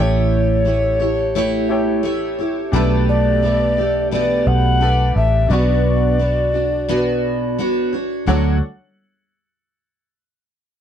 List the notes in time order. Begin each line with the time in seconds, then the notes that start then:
Already playing: A1 A3 E4 G4 A4 C#5
0.00 C#5 G5
0.65 A3 E4 G4 C#5
1.00 E4 G4 C#5
1.35 A3 E4 G4 C#5
1.69 E4 G4 A4 C#5 G5
2.03 A3 E4 G4 C#5
2.39 E4 G4 C#5
2.72 B1 B2 A3 B3 D4 G4 A4 B4 D5
2.76 A5
3.09 D5
3.43 A3 B3 G4 D5
3.77 A3 G4 D5
4.11 B2 A3 B3 G4 D5
4.47 B1 F#5
4.80 A3 B3 D4 G4 A4 B4 D5 A5
5.16 A1 E5
5.48 B1 B2 B3 D4 F#4 B4 D5 C#6
5.53 F#5
6.19 B3 D4 F#4
6.54 D4 F#4
6.89 B2 B3 D4 F#4
7.58 B3 D4 F#4 C#5
7.93 D4 F#4 C#5
8.26 D2 D3 F#3 A3 D4 F#4 A4 C#5 F#5